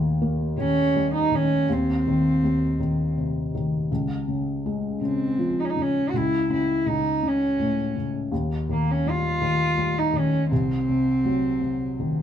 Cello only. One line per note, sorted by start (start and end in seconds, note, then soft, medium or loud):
0.60 1.10 C#4 medium
1.14 1.37 D#4 medium
1.35 1.73 C#4 medium
1.72 3.18 C4 medium
5.04 5.62 C4 medium
5.60 5.67 D#4 medium
5.65 5.71 C#4 medium
5.70 5.83 D#4 medium
5.82 6.11 C#4 medium
6.10 6.18 F#4 medium
6.16 6.50 E4 medium
6.53 6.90 E4 medium
6.88 7.29 D#4 medium
7.28 8.07 C#4 medium
8.72 8.92 A#3 medium
8.91 9.11 C#4 medium
9.09 10.00 F4 medium
9.98 10.20 D#4 medium
10.19 10.52 C#4 medium
10.53 12.22 C4 medium